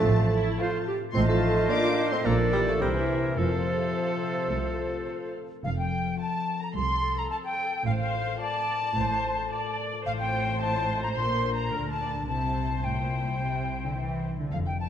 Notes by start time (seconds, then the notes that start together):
Already playing: F3 A3 C4 F4 A4 C5 F5 A5 C6
0.04 A1 A2 C4
0.19 C4
0.32 E4 C5
0.47 F4
0.60 F4 C5 F5
0.73 C6
0.87 G4 C5
1.01 F4
1.13 A1 A2 A3 C4 F4 C5 D#5 C6
1.28 F3 A3 D#4 A4 A5
1.56 D#5
1.68 A#3 D4 F4 D5 D#5 D6
1.98 D#5
2.10 A3 C4 C5 C6
2.24 A#1 A#2 F3 A#3 D4 F4 A4 A#4 D5 A#5
2.40 D4
2.52 E3 G3 G4 A4 G5
2.67 F3 A3 D5 A5
2.80 C2 C3 E3 G3 E4 G4 A#4 C5 G5
2.94 C3 E3 A#3 E4 E5
3.09 G4
3.37 F1 F2 C3 F3 F4 A4 C5 F5
3.45 E3
3.51 F3 C4
3.67 A4
3.95 A4 C5 F5
4.10 A5
4.24 C5
4.50 C2 A3
4.65 C4
4.80 A4
5.07 A4 C5 F5
5.22 A5
5.36 C5
5.49 A4
5.64 F1 F2 F3 F5
5.77 C4 G5
5.92 A4
6.06 C5
6.17 F4 F5 A5
6.34 A5
6.48 C5
6.62 A4 A#5
6.75 C2 A3 A4 C6
6.89 C4
7.02 A4
7.16 C5 A#5
7.29 F4 F5 A5
7.44 G5 A5
7.71 A4
7.85 A1 A2 C5 F5
7.99 A3 F5
8.13 F4
8.27 A4
8.40 F4 C5 D5 A5
8.55 F5
8.82 F4
8.96 A1 A2 C5
9.10 A3
9.24 F4
9.37 A4
9.51 F4 C5 D5
9.65 F5
9.79 A4
9.93 F4
10.06 A1 A2 F4 C5 F5
10.19 C4 G5
10.34 F4
10.47 C5
10.61 F4 D#5 A5
10.75 F5
10.88 C5
11.02 F4 A#5
11.16 A#1 A#2 D4 C6
11.31 D4
11.45 F4
11.53 A#5
11.59 D5
11.73 D2 D3 F4 A#4
11.87 F5 A5
12.01 D5
12.15 F4
12.27 C2 C3 E4 C5 A5
12.44 C4
12.57 C5
12.71 E4
12.84 A2 E4 E5 G5
12.98 A#2
13.13 C5
13.27 E4
13.40 C3 G3
13.55 C4
13.69 C5
13.83 D3 E4
13.97 E3 E5
14.12 C6
14.26 C5
14.40 D3 E4
14.51 F1 F2 F5
14.66 C4 G5
14.80 C5 A5